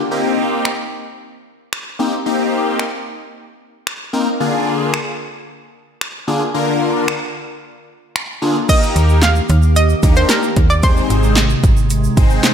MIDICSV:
0, 0, Header, 1, 6, 480
1, 0, Start_track
1, 0, Key_signature, -3, "major"
1, 0, Tempo, 535714
1, 106, Time_signature, 4, 2, 24, 8
1, 11234, End_track
2, 0, Start_track
2, 0, Title_t, "Synth pluck"
2, 0, Program_c, 0, 84
2, 7790, Note_on_c, 0, 75, 106
2, 8234, Note_off_c, 0, 75, 0
2, 8269, Note_on_c, 0, 77, 105
2, 8748, Note_on_c, 0, 75, 101
2, 8762, Note_off_c, 0, 77, 0
2, 9110, Note_on_c, 0, 72, 94
2, 9118, Note_off_c, 0, 75, 0
2, 9229, Note_on_c, 0, 70, 94
2, 9231, Note_off_c, 0, 72, 0
2, 9587, Note_on_c, 0, 74, 88
2, 9598, Note_off_c, 0, 70, 0
2, 9641, Note_off_c, 0, 74, 0
2, 9709, Note_on_c, 0, 72, 91
2, 11112, Note_off_c, 0, 72, 0
2, 11234, End_track
3, 0, Start_track
3, 0, Title_t, "Analog polysynth"
3, 0, Program_c, 1, 90
3, 100, Note_on_c, 1, 58, 86
3, 102, Note_on_c, 1, 60, 83
3, 103, Note_on_c, 1, 63, 77
3, 105, Note_on_c, 1, 67, 96
3, 608, Note_off_c, 1, 58, 0
3, 609, Note_off_c, 1, 60, 0
3, 610, Note_off_c, 1, 63, 0
3, 610, Note_off_c, 1, 67, 0
3, 1784, Note_on_c, 1, 58, 83
3, 1786, Note_on_c, 1, 60, 77
3, 1787, Note_on_c, 1, 63, 82
3, 1789, Note_on_c, 1, 67, 91
3, 1909, Note_off_c, 1, 58, 0
3, 1912, Note_off_c, 1, 60, 0
3, 1912, Note_off_c, 1, 63, 0
3, 1914, Note_off_c, 1, 67, 0
3, 2024, Note_on_c, 1, 58, 88
3, 2024, Note_on_c, 1, 60, 80
3, 2027, Note_on_c, 1, 63, 78
3, 2028, Note_on_c, 1, 67, 95
3, 2530, Note_off_c, 1, 58, 0
3, 2530, Note_off_c, 1, 60, 0
3, 2531, Note_off_c, 1, 63, 0
3, 2532, Note_off_c, 1, 67, 0
3, 3701, Note_on_c, 1, 58, 88
3, 3703, Note_on_c, 1, 60, 82
3, 3704, Note_on_c, 1, 63, 79
3, 3705, Note_on_c, 1, 70, 95
3, 3826, Note_off_c, 1, 58, 0
3, 3828, Note_off_c, 1, 60, 0
3, 3829, Note_off_c, 1, 63, 0
3, 3830, Note_off_c, 1, 70, 0
3, 3942, Note_on_c, 1, 50, 89
3, 3945, Note_on_c, 1, 58, 81
3, 3945, Note_on_c, 1, 62, 78
3, 3947, Note_on_c, 1, 65, 77
3, 3948, Note_on_c, 1, 68, 96
3, 4449, Note_off_c, 1, 50, 0
3, 4451, Note_off_c, 1, 58, 0
3, 4451, Note_off_c, 1, 62, 0
3, 4452, Note_off_c, 1, 65, 0
3, 4452, Note_off_c, 1, 68, 0
3, 5622, Note_on_c, 1, 50, 84
3, 5623, Note_on_c, 1, 58, 79
3, 5623, Note_on_c, 1, 62, 77
3, 5625, Note_on_c, 1, 65, 78
3, 5626, Note_on_c, 1, 68, 97
3, 5747, Note_off_c, 1, 50, 0
3, 5748, Note_off_c, 1, 62, 0
3, 5749, Note_off_c, 1, 58, 0
3, 5750, Note_off_c, 1, 65, 0
3, 5752, Note_off_c, 1, 68, 0
3, 5863, Note_on_c, 1, 50, 83
3, 5863, Note_on_c, 1, 58, 80
3, 5864, Note_on_c, 1, 62, 80
3, 5865, Note_on_c, 1, 65, 79
3, 5866, Note_on_c, 1, 70, 96
3, 6370, Note_off_c, 1, 50, 0
3, 6370, Note_off_c, 1, 58, 0
3, 6370, Note_off_c, 1, 62, 0
3, 6371, Note_off_c, 1, 65, 0
3, 6371, Note_off_c, 1, 70, 0
3, 7541, Note_on_c, 1, 50, 88
3, 7544, Note_on_c, 1, 58, 81
3, 7545, Note_on_c, 1, 62, 78
3, 7546, Note_on_c, 1, 65, 80
3, 7547, Note_on_c, 1, 68, 98
3, 7667, Note_off_c, 1, 50, 0
3, 7669, Note_off_c, 1, 58, 0
3, 7670, Note_off_c, 1, 62, 0
3, 7672, Note_off_c, 1, 65, 0
3, 7672, Note_off_c, 1, 68, 0
3, 7782, Note_on_c, 1, 58, 79
3, 7784, Note_on_c, 1, 63, 73
3, 7785, Note_on_c, 1, 67, 72
3, 7786, Note_on_c, 1, 70, 87
3, 8289, Note_off_c, 1, 58, 0
3, 8290, Note_off_c, 1, 63, 0
3, 8290, Note_off_c, 1, 67, 0
3, 8291, Note_off_c, 1, 70, 0
3, 8985, Note_on_c, 1, 58, 78
3, 8985, Note_on_c, 1, 62, 70
3, 8987, Note_on_c, 1, 63, 70
3, 8988, Note_on_c, 1, 67, 72
3, 8990, Note_on_c, 1, 70, 85
3, 9364, Note_off_c, 1, 58, 0
3, 9364, Note_off_c, 1, 62, 0
3, 9365, Note_off_c, 1, 63, 0
3, 9366, Note_off_c, 1, 67, 0
3, 9367, Note_off_c, 1, 70, 0
3, 9703, Note_on_c, 1, 56, 82
3, 9705, Note_on_c, 1, 60, 73
3, 9706, Note_on_c, 1, 63, 75
3, 9706, Note_on_c, 1, 68, 75
3, 9708, Note_on_c, 1, 72, 87
3, 10210, Note_off_c, 1, 56, 0
3, 10210, Note_off_c, 1, 60, 0
3, 10211, Note_off_c, 1, 63, 0
3, 10211, Note_off_c, 1, 68, 0
3, 10212, Note_off_c, 1, 72, 0
3, 10902, Note_on_c, 1, 56, 89
3, 10904, Note_on_c, 1, 60, 83
3, 10905, Note_on_c, 1, 63, 85
3, 10906, Note_on_c, 1, 68, 85
3, 10907, Note_on_c, 1, 72, 100
3, 11234, Note_off_c, 1, 56, 0
3, 11234, Note_off_c, 1, 60, 0
3, 11234, Note_off_c, 1, 63, 0
3, 11234, Note_off_c, 1, 68, 0
3, 11234, Note_off_c, 1, 72, 0
3, 11234, End_track
4, 0, Start_track
4, 0, Title_t, "Ambient pad"
4, 0, Program_c, 2, 92
4, 7785, Note_on_c, 2, 51, 84
4, 7785, Note_on_c, 2, 67, 93
4, 7786, Note_on_c, 2, 58, 75
4, 9686, Note_off_c, 2, 51, 0
4, 9686, Note_off_c, 2, 67, 0
4, 9687, Note_off_c, 2, 58, 0
4, 9706, Note_on_c, 2, 48, 83
4, 9707, Note_on_c, 2, 56, 78
4, 9708, Note_on_c, 2, 51, 85
4, 11234, Note_off_c, 2, 48, 0
4, 11234, Note_off_c, 2, 51, 0
4, 11234, Note_off_c, 2, 56, 0
4, 11234, End_track
5, 0, Start_track
5, 0, Title_t, "FM bass"
5, 0, Program_c, 3, 39
5, 8026, Note_on_c, 3, 39, 87
5, 8431, Note_off_c, 3, 39, 0
5, 8508, Note_on_c, 3, 39, 95
5, 8912, Note_off_c, 3, 39, 0
5, 8988, Note_on_c, 3, 39, 92
5, 9189, Note_off_c, 3, 39, 0
5, 9467, Note_on_c, 3, 39, 100
5, 9871, Note_off_c, 3, 39, 0
5, 9947, Note_on_c, 3, 32, 94
5, 10351, Note_off_c, 3, 32, 0
5, 10425, Note_on_c, 3, 32, 94
5, 10830, Note_off_c, 3, 32, 0
5, 10906, Note_on_c, 3, 32, 89
5, 11108, Note_off_c, 3, 32, 0
5, 11234, End_track
6, 0, Start_track
6, 0, Title_t, "Drums"
6, 584, Note_on_c, 9, 26, 106
6, 674, Note_off_c, 9, 26, 0
6, 1548, Note_on_c, 9, 26, 108
6, 1637, Note_off_c, 9, 26, 0
6, 2504, Note_on_c, 9, 26, 113
6, 2594, Note_off_c, 9, 26, 0
6, 3467, Note_on_c, 9, 26, 109
6, 3557, Note_off_c, 9, 26, 0
6, 4423, Note_on_c, 9, 26, 114
6, 4513, Note_off_c, 9, 26, 0
6, 5388, Note_on_c, 9, 26, 102
6, 5478, Note_off_c, 9, 26, 0
6, 6344, Note_on_c, 9, 26, 112
6, 6434, Note_off_c, 9, 26, 0
6, 7309, Note_on_c, 9, 26, 107
6, 7398, Note_off_c, 9, 26, 0
6, 7785, Note_on_c, 9, 82, 68
6, 7787, Note_on_c, 9, 36, 109
6, 7787, Note_on_c, 9, 42, 93
6, 7787, Note_on_c, 9, 49, 96
6, 7875, Note_off_c, 9, 82, 0
6, 7876, Note_off_c, 9, 36, 0
6, 7877, Note_off_c, 9, 42, 0
6, 7877, Note_off_c, 9, 49, 0
6, 7909, Note_on_c, 9, 82, 53
6, 7999, Note_off_c, 9, 82, 0
6, 8027, Note_on_c, 9, 82, 50
6, 8028, Note_on_c, 9, 42, 73
6, 8117, Note_off_c, 9, 82, 0
6, 8118, Note_off_c, 9, 42, 0
6, 8145, Note_on_c, 9, 82, 50
6, 8234, Note_off_c, 9, 82, 0
6, 8260, Note_on_c, 9, 38, 95
6, 8264, Note_on_c, 9, 82, 71
6, 8267, Note_on_c, 9, 39, 122
6, 8270, Note_on_c, 9, 42, 101
6, 8350, Note_off_c, 9, 38, 0
6, 8354, Note_off_c, 9, 82, 0
6, 8357, Note_off_c, 9, 39, 0
6, 8359, Note_off_c, 9, 42, 0
6, 8383, Note_on_c, 9, 82, 52
6, 8473, Note_off_c, 9, 82, 0
6, 8503, Note_on_c, 9, 82, 59
6, 8508, Note_on_c, 9, 42, 69
6, 8593, Note_off_c, 9, 82, 0
6, 8598, Note_off_c, 9, 42, 0
6, 8622, Note_on_c, 9, 82, 53
6, 8712, Note_off_c, 9, 82, 0
6, 8744, Note_on_c, 9, 82, 79
6, 8749, Note_on_c, 9, 42, 95
6, 8834, Note_off_c, 9, 82, 0
6, 8838, Note_off_c, 9, 42, 0
6, 8866, Note_on_c, 9, 82, 54
6, 8956, Note_off_c, 9, 82, 0
6, 8983, Note_on_c, 9, 82, 55
6, 8988, Note_on_c, 9, 36, 107
6, 8990, Note_on_c, 9, 42, 83
6, 9073, Note_off_c, 9, 82, 0
6, 9078, Note_off_c, 9, 36, 0
6, 9080, Note_off_c, 9, 42, 0
6, 9102, Note_on_c, 9, 82, 52
6, 9191, Note_off_c, 9, 82, 0
6, 9221, Note_on_c, 9, 38, 93
6, 9224, Note_on_c, 9, 42, 109
6, 9224, Note_on_c, 9, 82, 74
6, 9228, Note_on_c, 9, 39, 114
6, 9311, Note_off_c, 9, 38, 0
6, 9313, Note_off_c, 9, 42, 0
6, 9313, Note_off_c, 9, 82, 0
6, 9317, Note_off_c, 9, 39, 0
6, 9345, Note_on_c, 9, 82, 57
6, 9435, Note_off_c, 9, 82, 0
6, 9466, Note_on_c, 9, 42, 80
6, 9467, Note_on_c, 9, 36, 100
6, 9556, Note_off_c, 9, 42, 0
6, 9557, Note_off_c, 9, 36, 0
6, 9587, Note_on_c, 9, 82, 53
6, 9676, Note_off_c, 9, 82, 0
6, 9704, Note_on_c, 9, 82, 68
6, 9706, Note_on_c, 9, 42, 89
6, 9707, Note_on_c, 9, 36, 115
6, 9793, Note_off_c, 9, 82, 0
6, 9796, Note_off_c, 9, 42, 0
6, 9797, Note_off_c, 9, 36, 0
6, 9828, Note_on_c, 9, 82, 51
6, 9918, Note_off_c, 9, 82, 0
6, 9947, Note_on_c, 9, 82, 50
6, 9949, Note_on_c, 9, 42, 72
6, 10037, Note_off_c, 9, 82, 0
6, 10038, Note_off_c, 9, 42, 0
6, 10064, Note_on_c, 9, 82, 51
6, 10154, Note_off_c, 9, 82, 0
6, 10177, Note_on_c, 9, 38, 100
6, 10183, Note_on_c, 9, 82, 74
6, 10184, Note_on_c, 9, 39, 120
6, 10187, Note_on_c, 9, 42, 106
6, 10267, Note_off_c, 9, 38, 0
6, 10273, Note_off_c, 9, 82, 0
6, 10274, Note_off_c, 9, 39, 0
6, 10276, Note_off_c, 9, 42, 0
6, 10303, Note_on_c, 9, 82, 51
6, 10393, Note_off_c, 9, 82, 0
6, 10426, Note_on_c, 9, 36, 102
6, 10426, Note_on_c, 9, 42, 69
6, 10426, Note_on_c, 9, 82, 60
6, 10515, Note_off_c, 9, 36, 0
6, 10515, Note_off_c, 9, 82, 0
6, 10516, Note_off_c, 9, 42, 0
6, 10543, Note_on_c, 9, 82, 50
6, 10633, Note_off_c, 9, 82, 0
6, 10663, Note_on_c, 9, 82, 79
6, 10666, Note_on_c, 9, 42, 97
6, 10752, Note_off_c, 9, 82, 0
6, 10756, Note_off_c, 9, 42, 0
6, 10786, Note_on_c, 9, 82, 54
6, 10876, Note_off_c, 9, 82, 0
6, 10904, Note_on_c, 9, 82, 55
6, 10906, Note_on_c, 9, 36, 106
6, 10908, Note_on_c, 9, 42, 81
6, 10993, Note_off_c, 9, 82, 0
6, 10996, Note_off_c, 9, 36, 0
6, 10997, Note_off_c, 9, 42, 0
6, 11021, Note_on_c, 9, 82, 54
6, 11111, Note_off_c, 9, 82, 0
6, 11141, Note_on_c, 9, 38, 90
6, 11141, Note_on_c, 9, 82, 76
6, 11144, Note_on_c, 9, 42, 111
6, 11148, Note_on_c, 9, 39, 114
6, 11231, Note_off_c, 9, 38, 0
6, 11231, Note_off_c, 9, 82, 0
6, 11234, Note_off_c, 9, 39, 0
6, 11234, Note_off_c, 9, 42, 0
6, 11234, End_track
0, 0, End_of_file